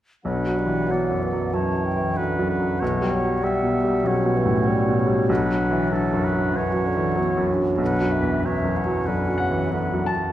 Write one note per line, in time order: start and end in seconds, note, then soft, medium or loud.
0.24 1.50 B1 soft
0.24 0.59 F#3 soft
0.24 0.86 D4 soft
0.24 0.93 B4 soft
0.24 1.55 F#5 soft
0.47 0.82 F#3 soft
0.58 0.92 G3 soft
0.66 0.89 E3 soft
0.90 1.24 F#3 soft
0.90 1.53 B3 soft
0.90 1.56 D5 soft
1.10 1.45 F#2 soft
1.22 2.17 E3 soft
1.33 1.67 F#3 soft
1.53 1.87 F#2 soft
1.53 2.86 C#4 soft
1.53 2.19 C#5 soft
1.53 1.87 A5 soft
1.74 2.08 F#3 soft
1.85 2.18 G5 soft
1.96 2.17 E3 soft
2.15 2.80 D3 soft
2.15 2.52 F#3 soft
2.15 2.49 B4 soft
2.15 5.29 F#5 soft
2.39 2.73 F#2 soft
2.50 2.82 B4 soft
2.60 2.81 F#3 soft
2.80 4.01 B1 soft
2.80 3.13 E3 soft
2.80 3.42 B3 soft
2.80 3.45 C#5 soft
3.01 3.34 G3 soft
3.12 3.44 F#3 soft
3.22 3.43 F#3 soft
3.42 4.07 G3 soft
3.42 3.76 G3 soft
3.42 4.06 B3 soft
3.42 4.08 E5 soft
3.63 3.96 B2 soft
3.84 4.17 G3 soft
4.04 5.25 B1 soft
4.04 4.38 F#3 soft
4.04 5.31 C#4 soft
4.04 5.29 C#5 soft
4.25 4.59 B2 soft
4.36 4.69 E3 soft
4.46 4.67 A2 soft
4.67 5.00 G3 soft
4.88 5.21 B2 soft
4.99 6.54 F#3 soft
5.07 5.28 G3 soft
5.29 6.50 B1 soft
5.29 5.91 D4 soft
5.29 5.94 B4 soft
5.29 5.91 F#5 soft
5.49 5.83 F#3 soft
5.71 5.92 E3 soft
5.91 6.25 F#3 soft
5.91 6.57 D4 soft
5.91 6.26 A4 soft
5.91 6.53 F#5 soft
6.13 6.46 F#2 soft
6.24 6.58 B4 soft
6.33 6.67 F#3 soft
6.53 6.87 F#2 soft
6.53 6.87 E3 soft
6.53 6.96 C#4 soft
6.53 7.54 C#5 soft
6.53 7.51 F#5 soft
6.72 7.07 F#3 soft
6.86 7.19 D3 soft
6.96 7.17 E3 soft
7.15 7.50 F#3 soft
7.15 8.17 F#3 soft
7.15 7.46 B3 soft
7.37 7.71 F#2 soft
7.50 8.47 D4 soft
7.58 7.93 F#3 soft
7.78 9.03 B1 soft
7.78 8.13 F#5 soft
7.83 8.47 B4 soft
8.01 8.35 F#2 soft
8.12 8.44 E5 soft
8.21 8.43 E2 soft
8.44 9.04 E3 soft
8.44 8.78 F#3 soft
8.44 9.74 C#4 soft
8.44 9.08 C#5 soft
8.44 8.78 E5 soft
8.64 8.99 F#2 soft
8.77 9.71 F#5 soft
8.86 9.20 F#3 soft
9.07 9.42 F#2 soft
9.07 9.42 D3 soft
9.07 9.72 B4 soft
9.28 9.64 F#3 soft
9.38 9.73 C#3 soft
9.38 10.03 F#5 soft
9.51 9.73 E3 soft
9.70 10.07 D3 soft
9.70 10.09 F#3 soft
9.70 10.08 B3 soft
9.70 10.07 B4 soft
9.70 10.06 F#5 soft
9.93 10.32 F#2 soft
10.06 10.32 A5 soft
10.16 10.32 F#3 soft